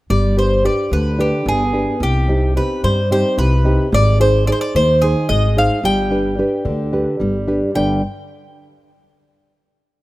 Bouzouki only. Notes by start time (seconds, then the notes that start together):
0.10 D5
0.39 C5
0.65 D5
0.93 B4
1.21 G4
1.48 G#4
2.03 G4
2.57 B4
2.84 C5
3.12 C5
3.38 B4
3.94 D5
4.21 C5
4.47 D5
4.52 C5
4.61 D5
4.76 C5
5.02 G#4
5.29 D#5
5.58 F5
5.85 G5
7.75 G5